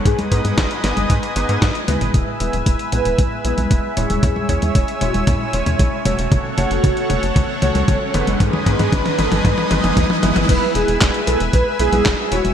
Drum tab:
CC |----------------|----------------|----------------|----------------|
HH |xxxxxxxxxxxxxxxx|x-xxxxxxx-xxx-xx|x-xxxxxxx-xxx-xx|x-xxxxxxx-xxx-xx|
CP |----------------|----------------|----------------|----------------|
SD |----o-o-----o---|----------------|----------------|----------------|
T1 |--------------o-|----------------|----------------|----------------|
T2 |---------------o|o--o--o-o-----o-|o-----o-o--o--o-|o-o-o-o-o-o-o-o-|
CG |-o-o---o------o-|-----------o---o|-o-o---o------o-|-----------o---o|
BD |o-o-o---o---o---|o---o---o---o---|o-o-o---o---o---|o---o---o---o---|

CC |----------------|x---------------|
HH |x-xxxxxxx-xxx-xx|x-xxxxxxx-xxx-xx|
CP |----------------|----x-------x---|
SD |----------------|----o-------o---|
T1 |----------------|----------------|
T2 |oooooooooooooooo|----------------|
CG |-o-o---o------o-|-----------o---o|
BD |o-o-o---o---o---|o---o---o---o---|